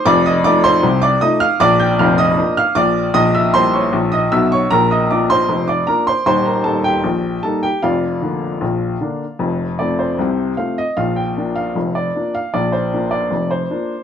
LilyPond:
<<
  \new Staff \with { instrumentName = "Upright piano" } { \time 2/4 \key bes \major \tempo 4 = 77 << { d'''16 ees'''16 d'''16 c'''8 d'''16 ees'''16 f'''16 | d'''16 g'''16 f'''16 ees'''8 f'''16 d'''8 | ees'''16 fes'''16 c'''16 des'''8 ees'''16 fes'''16 des'''16 | bes''16 ees'''16 d'''16 c'''8 d'''16 bes''16 c'''16 |
c'''16 bes''16 a''16 g''8. a''16 g''16 | f''2~ | f''8 d''16 c''8. f''16 ees''16 | f''16 g''8 f''8 d''8 f''16 |
d''16 c''8 d''8 c''8. | } \\ { d''16 ees''16 d''16 c''8 d''16 ees''16 f''16 | d''16 g''16 f''16 ees''8 f''16 d''8 | ees''16 fes''16 c''16 des''8 ees''16 fes''16 des''16 | bes'16 ees''16 d''16 c''8 d''16 bes'16 c''16 |
c''16 bes'16 a'16 g'8. a'16 g'16 | <f' d''>2~ | <f' d''>4 r4 | r2 |
r2 | } >> }
  \new Staff \with { instrumentName = "Upright piano" } { \clef bass \time 2/4 \key bes \major <f,, f,>8 <f a ees'>8 <c, c>8 <f a ees'>8 | <bes,, bes,>8 <f,, f,>8 <f bes d'>8 <bes,, bes,>8 | <bes,, bes,>8 <g bes fes'>8 <bes,, bes,>8 <ces, ces>8 | <bes,, bes,>8 <f bes d'>8 <f,, f,>8 <f bes d'>8 |
<ees,, ees,>8 <g bes ees'>8 <bes,, bes,>8 <g bes ees'>8 | <f,, f,>8 <d bes d'>8 <bes,, bes,>8 <d bes d'>8 | <f,, f,>8 <f a c'>8 <c, c>8 <f a c'>8 | <bes,, bes,>8 <f bes d'>8 <f,, f,>8 <f bes d'>8 |
<bes,, bes,>8 <f bes d'>8 <f,, f,>8 <f bes d'>8 | }
>>